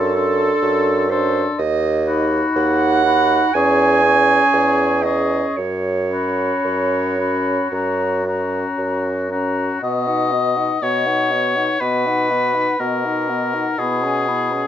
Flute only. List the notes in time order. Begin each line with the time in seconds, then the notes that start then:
Already playing: C6
0.16 C6
1.11 C6
2.07 B5
3.05 B5
3.55 C#6
4.05 C#6
5.04 C#6
6.11 B5
7.18 B5
7.73 A#5
8.27 A#5
9.31 A#5
9.82 D#5
10.07 F#5
10.31 D#5
10.57 F#5
10.82 D#5
11.07 F#5
11.32 D#5
11.56 F#5
11.82 D#5
12.07 F#5
12.31 D#5
12.55 F#5
12.80 D#5
13.05 F#5
13.29 D#5
13.54 F#5
13.79 B5
14.04 G#5
14.28 B5
14.53 G#5